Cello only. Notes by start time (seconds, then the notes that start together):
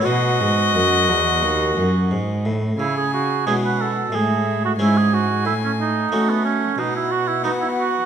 0.05 B2
0.40 G#2
0.75 F#2
1.08 E2
1.42 D#2
1.78 F#2
2.12 G#2
2.45 A2
2.79 C#3
3.46 B2
4.13 A2
4.79 G#2
5.45 A2
6.12 A3
6.79 B2
7.44 B3